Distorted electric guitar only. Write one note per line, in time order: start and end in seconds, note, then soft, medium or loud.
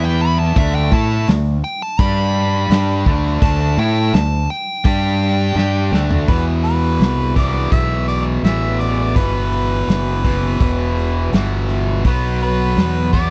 0.00 0.55 E3 loud
0.00 0.55 B3 loud
0.00 0.56 E4 loud
0.56 0.91 D3 loud
0.56 0.91 A3 loud
0.56 0.91 D4 loud
0.92 1.27 A3 medium
0.92 1.27 E4 loud
0.92 1.27 A4 loud
1.28 1.57 D3 medium
1.28 1.57 A3 medium
1.99 2.69 G3 medium
1.99 2.69 D4 loud
1.99 2.70 G4 loud
2.70 3.05 G3 loud
2.70 3.05 D4 loud
2.70 3.06 G4 loud
3.06 3.41 D3 loud
3.06 3.41 A3 medium
3.06 3.41 D4 loud
3.42 3.77 D3 loud
3.42 3.77 A3 loud
3.42 3.77 D4 loud
3.78 4.13 A3 medium
3.78 4.13 E4 loud
3.78 4.13 A4 medium
4.13 4.42 D3 medium
4.13 4.42 A3 medium
4.84 5.55 G3 loud
4.84 5.55 D4 loud
4.84 5.55 G4 loud
5.56 5.91 G3 loud
5.56 5.91 D4 loud
5.56 5.91 G4 loud
5.92 6.27 D3 medium
5.92 6.27 A3 loud
5.92 6.27 D4 loud
6.28 7.37 E2 medium
6.28 7.34 B2 medium
6.28 7.35 E3 medium
7.35 8.42 E2 medium
7.35 8.42 B2 medium
7.35 8.42 E3 medium
8.44 9.14 E2 medium
8.44 9.14 B2 medium
8.44 9.15 E3 medium
9.15 10.22 E2 medium
9.15 10.22 B2 medium
9.15 10.23 E3 medium
10.24 11.31 E2 medium
10.24 11.31 B2 medium
10.24 11.30 E3 medium
11.32 12.03 E2 medium
11.32 12.03 B2 medium
11.32 12.04 E3 medium
12.05 13.11 B2 medium
12.05 13.12 F#3 medium
12.05 13.11 B3 medium
13.13 13.30 B2 medium
13.13 13.30 F#3 medium
13.13 13.30 B3 medium